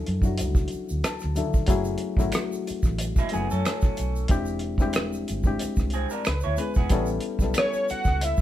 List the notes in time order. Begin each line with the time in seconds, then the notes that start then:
Already playing: F3 F#3 C#4 D4 E4 A4 G#5
0.06 F#2, closed hi-hat
0.22 F#3 C#4 D4 E4 F#4, kick, shaker
0.38 C#2, closed hi-hat, shaker
0.55 kick, shaker
0.68 closed hi-hat, shaker
0.74 muted fingered electric bass stroke
0.89 D2, shaker
1.04 A5, finger snap, cross-stick, closed hi-hat, shaker
1.20 cross-stick, shaker
1.24 D2
1.36 D3 F#3 C#4 D4 E4 A4 E5, closed hi-hat, shaker
1.53 kick, shaker
1.66 F#1 F#3 A3 C#4 E4, kick, closed hi-hat, shaker
1.70 G#4
1.84 shaker
1.98 closed hi-hat
2.17 G#1 F#3 A3 C#4 E4 F#4, kick, cross-stick, shaker
2.32 finger snap, cross-stick, closed hi-hat, shaker
2.52 shaker
2.67 muted fingered electric bass stroke, closed hi-hat, shaker
2.83 A1, kick, cross-stick, shaker
2.98 closed hi-hat, shaker
3.16 G#3 E4, kick, cross-stick, shaker
3.29 F#3 A3 C#4, closed hi-hat, shaker
3.33 F#1 B3 E4 G#4 G#5
3.50 F#2 C#4 A4, shaker
3.65 finger snap, cross-stick, closed hi-hat, shaker
3.81 kick, cross-stick, shaker
3.97 B1, closed hi-hat, shaker
4.16 shaker
4.28 E1 G#3 C4 D4 E4 G4, kick, closed hi-hat, shaker
4.45 shaker
4.59 closed hi-hat
4.78 G3 C4 D4 E4, kick, cross-stick, shaker
4.82 G#3 G4
4.93 finger snap, cross-stick, closed hi-hat, shaker
5.13 shaker
5.28 G1, closed hi-hat, shaker
5.43 G#3 C4 D4 E4 G4, kick, shaker
5.59 muted fingered electric bass stroke, closed hi-hat, shaker
5.76 C2, kick, cross-stick, shaker
5.90 G#4, closed hi-hat, shaker
5.94 C4
6.10 D4 A#4, shaker
6.25 C#2 B4, finger snap, cross-stick, closed hi-hat, shaker
6.40 E4 C#5, shaker
6.45 D2
6.57 G#3 B3 C#4 E4 G#4 B4, closed hi-hat, shaker
6.74 E1 B3 G#4, kick, shaker
6.90 A1 G3 B3 C#4 E4 A4, kick, closed hi-hat, shaker
7.06 shaker
7.20 closed hi-hat
7.39 B1 G3 B3 C#4, kick, cross-stick, shaker
7.44 E4 A4
7.54 finger snap, cross-stick, closed hi-hat, shaker
7.58 C#5
7.73 shaker
7.88 F#5, muted fingered electric bass stroke, closed hi-hat, shaker
8.04 C#2, kick, cross-stick, shaker
8.21 E5, closed hi-hat, shaker
8.37 kick, shaker